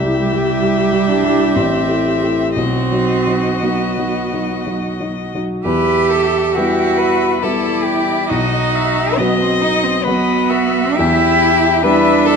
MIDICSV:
0, 0, Header, 1, 5, 480
1, 0, Start_track
1, 0, Key_signature, 1, "minor"
1, 0, Tempo, 900901
1, 828, Tempo, 1030928
1, 1296, Time_signature, 3, 2, 24, 8
1, 2268, Tempo, 991736
1, 2748, Tempo, 910470
1, 3228, Tempo, 875912
1, 5148, Tempo, 924499
1, 5628, Tempo, 864553
1, 6398, End_track
2, 0, Start_track
2, 0, Title_t, "Viola"
2, 0, Program_c, 0, 41
2, 0, Note_on_c, 0, 67, 78
2, 1298, Note_on_c, 0, 66, 65
2, 1305, Note_off_c, 0, 67, 0
2, 2646, Note_off_c, 0, 66, 0
2, 2749, Note_on_c, 0, 76, 66
2, 3207, Note_off_c, 0, 76, 0
2, 3231, Note_on_c, 0, 76, 64
2, 3698, Note_off_c, 0, 76, 0
2, 3707, Note_on_c, 0, 74, 67
2, 4182, Note_on_c, 0, 75, 76
2, 4191, Note_off_c, 0, 74, 0
2, 4434, Note_on_c, 0, 76, 75
2, 4442, Note_off_c, 0, 75, 0
2, 4669, Note_on_c, 0, 75, 70
2, 4677, Note_off_c, 0, 76, 0
2, 5142, Note_off_c, 0, 75, 0
2, 5145, Note_on_c, 0, 75, 77
2, 5381, Note_on_c, 0, 76, 82
2, 5388, Note_off_c, 0, 75, 0
2, 6102, Note_off_c, 0, 76, 0
2, 6105, Note_on_c, 0, 76, 86
2, 6339, Note_off_c, 0, 76, 0
2, 6343, Note_on_c, 0, 76, 84
2, 6398, Note_off_c, 0, 76, 0
2, 6398, End_track
3, 0, Start_track
3, 0, Title_t, "Violin"
3, 0, Program_c, 1, 40
3, 0, Note_on_c, 1, 76, 74
3, 1280, Note_off_c, 1, 76, 0
3, 1295, Note_on_c, 1, 75, 60
3, 2625, Note_off_c, 1, 75, 0
3, 2754, Note_on_c, 1, 71, 74
3, 2989, Note_on_c, 1, 69, 65
3, 2997, Note_off_c, 1, 71, 0
3, 3232, Note_on_c, 1, 67, 67
3, 3240, Note_off_c, 1, 69, 0
3, 3460, Note_on_c, 1, 71, 71
3, 3468, Note_off_c, 1, 67, 0
3, 3708, Note_on_c, 1, 69, 68
3, 3716, Note_off_c, 1, 71, 0
3, 3936, Note_on_c, 1, 67, 70
3, 3945, Note_off_c, 1, 69, 0
3, 4181, Note_off_c, 1, 67, 0
3, 4184, Note_on_c, 1, 66, 75
3, 4662, Note_on_c, 1, 75, 87
3, 4671, Note_off_c, 1, 66, 0
3, 5138, Note_on_c, 1, 71, 81
3, 5146, Note_off_c, 1, 75, 0
3, 5379, Note_on_c, 1, 66, 81
3, 5387, Note_off_c, 1, 71, 0
3, 5614, Note_off_c, 1, 66, 0
3, 5617, Note_on_c, 1, 67, 92
3, 6104, Note_on_c, 1, 71, 93
3, 6112, Note_off_c, 1, 67, 0
3, 6338, Note_on_c, 1, 69, 89
3, 6346, Note_off_c, 1, 71, 0
3, 6398, Note_off_c, 1, 69, 0
3, 6398, End_track
4, 0, Start_track
4, 0, Title_t, "Grand piano"
4, 0, Program_c, 2, 0
4, 0, Control_c, 2, 64, 127
4, 0, Note_on_c, 2, 36, 78
4, 25, Note_on_c, 2, 55, 56
4, 27, Note_on_c, 2, 67, 64
4, 28, Note_on_c, 2, 64, 57
4, 164, Note_off_c, 2, 55, 0
4, 165, Note_off_c, 2, 64, 0
4, 165, Note_off_c, 2, 67, 0
4, 176, Note_on_c, 2, 55, 52
4, 180, Note_on_c, 2, 64, 56
4, 182, Note_on_c, 2, 67, 62
4, 318, Note_off_c, 2, 55, 0
4, 321, Note_off_c, 2, 64, 0
4, 321, Note_off_c, 2, 67, 0
4, 332, Note_on_c, 2, 55, 53
4, 332, Note_on_c, 2, 64, 54
4, 336, Note_on_c, 2, 67, 56
4, 477, Note_off_c, 2, 55, 0
4, 477, Note_off_c, 2, 64, 0
4, 479, Note_off_c, 2, 67, 0
4, 492, Note_on_c, 2, 55, 48
4, 496, Note_on_c, 2, 64, 50
4, 497, Note_on_c, 2, 67, 54
4, 640, Note_off_c, 2, 55, 0
4, 643, Note_off_c, 2, 64, 0
4, 643, Note_off_c, 2, 67, 0
4, 660, Note_on_c, 2, 55, 53
4, 665, Note_on_c, 2, 64, 51
4, 668, Note_on_c, 2, 67, 57
4, 811, Note_off_c, 2, 55, 0
4, 814, Note_off_c, 2, 64, 0
4, 816, Note_off_c, 2, 67, 0
4, 830, Note_on_c, 2, 33, 67
4, 837, Control_c, 2, 64, 0
4, 838, Note_off_c, 2, 36, 0
4, 930, Control_c, 2, 64, 127
4, 976, Note_off_c, 2, 33, 0
4, 978, Note_on_c, 2, 57, 46
4, 984, Note_on_c, 2, 64, 49
4, 984, Note_on_c, 2, 67, 54
4, 1119, Note_off_c, 2, 57, 0
4, 1122, Note_off_c, 2, 64, 0
4, 1123, Note_off_c, 2, 67, 0
4, 1136, Note_on_c, 2, 57, 45
4, 1136, Note_on_c, 2, 64, 45
4, 1137, Note_on_c, 2, 67, 50
4, 1280, Note_off_c, 2, 64, 0
4, 1281, Note_off_c, 2, 57, 0
4, 1281, Note_off_c, 2, 67, 0
4, 1298, Note_on_c, 2, 35, 61
4, 1306, Control_c, 2, 64, 0
4, 1401, Control_c, 2, 64, 127
4, 1456, Note_off_c, 2, 35, 0
4, 1463, Note_on_c, 2, 54, 45
4, 1465, Note_on_c, 2, 63, 45
4, 1466, Note_on_c, 2, 66, 50
4, 1609, Note_off_c, 2, 54, 0
4, 1610, Note_off_c, 2, 63, 0
4, 1611, Note_off_c, 2, 66, 0
4, 1626, Note_on_c, 2, 54, 41
4, 1631, Note_on_c, 2, 63, 44
4, 1631, Note_on_c, 2, 66, 46
4, 1773, Note_off_c, 2, 54, 0
4, 1775, Note_off_c, 2, 63, 0
4, 1775, Note_off_c, 2, 66, 0
4, 1790, Note_on_c, 2, 54, 46
4, 1793, Note_on_c, 2, 63, 42
4, 1797, Note_on_c, 2, 66, 47
4, 1935, Note_off_c, 2, 54, 0
4, 1937, Note_off_c, 2, 63, 0
4, 1939, Note_off_c, 2, 66, 0
4, 1957, Note_on_c, 2, 54, 41
4, 1960, Note_on_c, 2, 63, 39
4, 1961, Note_on_c, 2, 66, 44
4, 2098, Note_off_c, 2, 54, 0
4, 2100, Note_off_c, 2, 63, 0
4, 2100, Note_off_c, 2, 66, 0
4, 2122, Note_on_c, 2, 63, 43
4, 2124, Note_on_c, 2, 54, 42
4, 2125, Note_on_c, 2, 66, 46
4, 2258, Note_off_c, 2, 63, 0
4, 2259, Note_off_c, 2, 54, 0
4, 2260, Note_off_c, 2, 66, 0
4, 2276, Note_on_c, 2, 54, 43
4, 2276, Note_on_c, 2, 63, 44
4, 2282, Note_on_c, 2, 66, 46
4, 2419, Note_off_c, 2, 54, 0
4, 2419, Note_off_c, 2, 63, 0
4, 2422, Note_off_c, 2, 66, 0
4, 2440, Note_on_c, 2, 63, 43
4, 2443, Note_on_c, 2, 54, 40
4, 2445, Note_on_c, 2, 66, 44
4, 2582, Note_off_c, 2, 63, 0
4, 2584, Note_off_c, 2, 54, 0
4, 2585, Note_off_c, 2, 66, 0
4, 2605, Note_on_c, 2, 54, 43
4, 2609, Note_on_c, 2, 63, 41
4, 2609, Note_on_c, 2, 66, 43
4, 2738, Note_off_c, 2, 54, 0
4, 2740, Note_off_c, 2, 63, 0
4, 2740, Note_off_c, 2, 66, 0
4, 2752, Note_on_c, 2, 40, 66
4, 2758, Control_c, 2, 64, 0
4, 2851, Control_c, 2, 64, 127
4, 3215, Note_off_c, 2, 40, 0
4, 3242, Note_on_c, 2, 55, 48
4, 3242, Note_on_c, 2, 59, 53
4, 3245, Note_on_c, 2, 64, 55
4, 3692, Note_off_c, 2, 55, 0
4, 3692, Note_off_c, 2, 59, 0
4, 3693, Note_off_c, 2, 64, 0
4, 3713, Note_on_c, 2, 55, 55
4, 3716, Note_on_c, 2, 64, 57
4, 3717, Note_on_c, 2, 59, 51
4, 4169, Note_off_c, 2, 55, 0
4, 4170, Note_off_c, 2, 64, 0
4, 4171, Note_off_c, 2, 59, 0
4, 4191, Note_on_c, 2, 35, 71
4, 4197, Control_c, 2, 64, 0
4, 4286, Control_c, 2, 64, 127
4, 4658, Note_off_c, 2, 35, 0
4, 4678, Note_on_c, 2, 54, 57
4, 4682, Note_on_c, 2, 66, 57
4, 4683, Note_on_c, 2, 59, 55
4, 5129, Note_off_c, 2, 54, 0
4, 5131, Note_off_c, 2, 59, 0
4, 5131, Note_off_c, 2, 66, 0
4, 5156, Note_on_c, 2, 54, 62
4, 5159, Note_on_c, 2, 66, 69
4, 5160, Note_on_c, 2, 59, 60
4, 5611, Note_off_c, 2, 54, 0
4, 5612, Note_off_c, 2, 66, 0
4, 5613, Note_off_c, 2, 59, 0
4, 5634, Note_on_c, 2, 40, 82
4, 5637, Control_c, 2, 64, 0
4, 5718, Control_c, 2, 64, 127
4, 6094, Note_off_c, 2, 40, 0
4, 6107, Note_on_c, 2, 55, 62
4, 6110, Note_on_c, 2, 59, 62
4, 6113, Note_on_c, 2, 64, 66
4, 6398, Note_off_c, 2, 55, 0
4, 6398, Note_off_c, 2, 59, 0
4, 6398, Note_off_c, 2, 64, 0
4, 6398, End_track
5, 0, Start_track
5, 0, Title_t, "Cello"
5, 0, Program_c, 3, 42
5, 102, Note_on_c, 3, 55, 95
5, 571, Note_on_c, 3, 62, 100
5, 579, Note_off_c, 3, 55, 0
5, 831, Note_on_c, 3, 60, 82
5, 838, Note_off_c, 3, 62, 0
5, 1294, Note_off_c, 3, 60, 0
5, 1297, Note_on_c, 3, 60, 102
5, 1795, Note_on_c, 3, 59, 74
5, 1802, Note_off_c, 3, 60, 0
5, 2516, Note_off_c, 3, 59, 0
5, 2747, Note_on_c, 3, 67, 101
5, 3228, Note_on_c, 3, 66, 100
5, 3236, Note_off_c, 3, 67, 0
5, 3697, Note_off_c, 3, 66, 0
5, 3701, Note_on_c, 3, 64, 97
5, 4187, Note_on_c, 3, 63, 105
5, 4195, Note_off_c, 3, 64, 0
5, 4670, Note_on_c, 3, 59, 94
5, 4679, Note_off_c, 3, 63, 0
5, 4798, Note_on_c, 3, 60, 87
5, 4806, Note_off_c, 3, 59, 0
5, 4909, Note_on_c, 3, 63, 99
5, 4917, Note_off_c, 3, 60, 0
5, 5030, Note_on_c, 3, 60, 88
5, 5038, Note_off_c, 3, 63, 0
5, 5144, Note_on_c, 3, 59, 102
5, 5152, Note_off_c, 3, 60, 0
5, 5623, Note_on_c, 3, 64, 124
5, 5631, Note_off_c, 3, 59, 0
5, 6102, Note_off_c, 3, 64, 0
5, 6107, Note_on_c, 3, 62, 116
5, 6398, Note_off_c, 3, 62, 0
5, 6398, End_track
0, 0, End_of_file